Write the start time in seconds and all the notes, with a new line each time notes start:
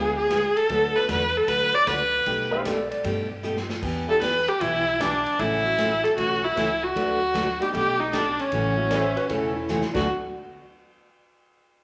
Already playing: D2 D3 G#3 B3 D4 F4 G#4
0.17 G#4
0.30 D3 G#3 B3 F4 G#4, kick, snare, hi-hat pedal, ride
0.57 A4, ride
0.69 D2 D3 F#3 A3 D4 F#4 B4, kick, ride
0.94 A3 B3 D4 F#4 A4 B4
1.08 E2 D3 F#3 A3 D4 F#4 B4, kick, snare, hi-hat pedal, ride
1.37 A4
1.47 D2 D3 F#3 A3 D4 F#4 B4, kick, ride
1.74 D5
1.87 C#2 D3 F#3 A3 D4 F#4 B4, kick, snare, hi-hat pedal, ride
2.26 B1 B2 G3 A3 D#4 G4, kick, ride
2.51 A3 B3 D4 D#4 G4 C5 F5
2.64 B2 G3 A3 D#4 G4 A4 D5, kick, snare, hi-hat pedal, ride
2.91 D5, ride
3.04 G2 B2 G3 A3 D#4 G4, kick, ride
3.43 B2 G3 A3 D#4 G4, hi-hat pedal
3.57 snare
3.69 snare
3.82 E2 E3 B3 D4 G4, kick, crash
4.07 G3 B3 D4 E4 G4 A4
4.21 E3 B3 D4 G4 B4, kick, snare, hi-hat pedal, ride
4.48 G4, ride
4.60 B1 E3 B3 D4 E4 G4, kick, ride
5.00 E3 B3 D4 G4, kick, snare, hi-hat pedal, ride
5.26 ride
5.38 A1 C#3 E3 A3 C#4 E4 F#4, kick, ride
5.64 F#3 A3 C#4 E4 F#4
5.78 C#3 E3 A3 C#4 F#4, kick, snare, hi-hat pedal, ride
6.04 A4, ride
6.17 B1 C#3 E3 A3 C#4 F#4, kick, ride
6.44 E4
6.56 C#2 C#3 E3 A3 C#4 F#4, kick, snare, hi-hat pedal, ride
6.83 F#4
6.95 D2 D3 F#3 A3 D4 F#4 B4, kick, ride
7.34 D3 F#3 A3 D4 F#4 B4, kick, snare, hi-hat pedal, ride
7.59 G3 A3 B3 D4 D#4 G4, ride
7.73 B1 B2 G3 A3 D#4 G4, kick, ride
8.00 D#4
8.12 B2 G3 A3 D4 D#4 G4, kick, snare, hi-hat pedal, ride
8.39 C#4, ride
8.52 A1 C#3 E3 A3 C#4 F#4, kick, ride
8.77 F#3 A3 C#4 E4 F#4
8.90 C#3 E3 A3 C#4 F#4 C5 E5, kick, snare, hi-hat pedal, ride
9.16 F#4 B4, ride
9.29 E1 C#3 E3 A3 C#4 E4 F#4 A4, kick, ride
9.56 E4
9.68 C#3 E3 A3 C#4 F#4, snare, hi-hat pedal
9.81 snare
9.94 D2 D3 F#3 A3 B3 D4 F#4 B4, kick, snare, crash